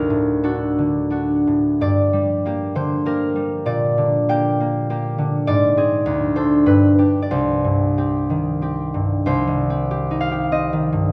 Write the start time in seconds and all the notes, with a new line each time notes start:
Already playing: D2 A#4
0.10 A2
0.44 D4 F#4 A4
0.78 D3
1.10 D4 F#4
1.47 A2
1.81 G2 D5
2.13 G3
2.46 A#3 G4
2.75 D3 C5
3.05 A#3 G4 A#4
3.36 G3
3.66 A#2 D5
3.98 D3
4.29 A#3 G4 G5
4.60 A#3
4.90 A#3 G4
5.18 D3
5.47 G#2 D5
5.77 C4 G#4
6.06 D2
6.36 D4 A4 C5
6.66 G2 B4
6.98 D4 G4
7.22 D5
7.31 C2 C5
7.64 G2
7.98 C4 G4
8.30 D#3
8.62 C4 G4
8.94 G2
9.26 C2 C5
9.47 D#3
9.70 C4
9.91 G4
10.11 D#4
10.21 F5
10.32 G4
10.52 C4 D#5
10.73 D#3
10.93 G2